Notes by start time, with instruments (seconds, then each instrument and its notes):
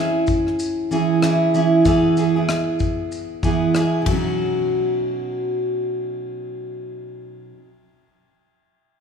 Already playing: steel-string acoustic guitar C#4 E4 G#4
0.27 kick, shaker
0.47 cross-stick
0.59 shaker
0.91 steel-string acoustic guitar E3 C#4 E4 G#4, shaker
1.22 steel-string acoustic guitar E3 C#4 E4 G#4, cross-stick, shaker
1.54 steel-string acoustic guitar E3 C#4 E4 G#4, shaker
1.85 steel-string acoustic guitar E3 B3 E4 G#4, kick, shaker
2.17 steel-string acoustic guitar E3 B3 E4 G#4, shaker
2.36 steel-string acoustic guitar B3 E4 G#4
2.49 cross-stick, shaker
2.79 kick, shaker
3.12 shaker
3.43 steel-string acoustic guitar E3 B3 E4 G#4, kick, shaker
3.74 steel-string acoustic guitar E3 B3 E4 G#4, cross-stick, shaker
4.02 steel-string acoustic guitar B2
4.06 steel-string acoustic guitar F#3, kick, ride
4.10 steel-string acoustic guitar C#4 D#4
4.17 steel-string acoustic guitar F#4